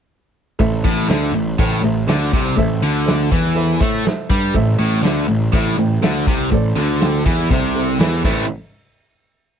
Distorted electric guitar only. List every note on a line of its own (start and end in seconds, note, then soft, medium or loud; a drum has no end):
0.60 0.80 A2 medium
0.84 1.08 A2 loud
1.10 1.33 D3 loud
1.35 1.54 A2 medium
1.59 1.82 A2 medium
1.83 2.03 A2 medium
2.08 2.32 D3 loud
2.33 2.56 C3 loud
2.56 2.77 A2 medium
2.83 3.31 D3 loud
3.32 3.80 E3 medium
3.81 4.05 A3 loud
4.06 muted distorted electric guitar stroke medium
4.30 4.54 G3 loud
4.54 4.74 A2 medium
4.79 5.03 A2 medium
5.03 5.28 D3 loud
5.28 5.48 A2 medium
5.53 5.77 A2 loud
5.78 5.98 A2 medium
6.03 6.27 D3 loud
6.27 6.51 C3 loud
6.52 6.71 A2 medium
6.76 7.25 D3 loud
7.26 7.50 E3 loud
7.51 7.99 C3 medium
8.00 8.24 E3 loud
8.24 8.44 A2 medium
8.24 8.45 E3 loud
8.24 8.45 A3 loud